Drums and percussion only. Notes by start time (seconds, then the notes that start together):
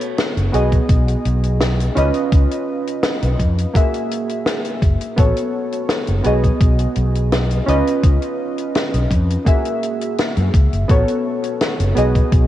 0.01 closed hi-hat
0.18 snare, closed hi-hat
0.37 closed hi-hat
0.54 closed hi-hat
0.72 kick, closed hi-hat
0.89 kick, closed hi-hat
1.08 closed hi-hat
1.25 closed hi-hat
1.43 closed hi-hat
1.60 snare, closed hi-hat
1.80 closed hi-hat
1.96 closed hi-hat
2.14 closed hi-hat
2.32 kick, closed hi-hat
2.51 closed hi-hat
2.87 closed hi-hat
3.03 snare, closed hi-hat
3.22 closed hi-hat
3.39 kick, closed hi-hat
3.58 closed hi-hat
3.75 kick, closed hi-hat
3.94 closed hi-hat
4.11 closed hi-hat
4.29 closed hi-hat
4.46 snare, closed hi-hat
4.65 closed hi-hat
4.82 kick, closed hi-hat
5.01 closed hi-hat
5.17 kick, closed hi-hat
5.36 closed hi-hat
5.72 closed hi-hat
5.89 snare, closed hi-hat
6.07 closed hi-hat
6.24 closed hi-hat
6.44 kick, closed hi-hat
6.61 kick, closed hi-hat
6.79 closed hi-hat
6.96 closed hi-hat
7.15 closed hi-hat
7.32 snare, closed hi-hat
7.51 closed hi-hat
7.68 closed hi-hat
7.87 closed hi-hat
8.03 kick, closed hi-hat
8.22 closed hi-hat
8.58 closed hi-hat
8.75 snare, closed hi-hat
8.94 closed hi-hat
9.11 kick, closed hi-hat
9.30 closed hi-hat
9.47 kick, closed hi-hat
9.65 closed hi-hat
9.83 closed hi-hat
10.01 closed hi-hat
10.18 snare, closed hi-hat
10.36 closed hi-hat
10.54 kick, closed hi-hat
10.73 closed hi-hat
10.89 kick, closed hi-hat
11.08 closed hi-hat
11.43 closed hi-hat
11.61 snare, closed hi-hat
11.80 closed hi-hat
11.96 closed hi-hat
12.15 kick, closed hi-hat
12.32 kick, closed hi-hat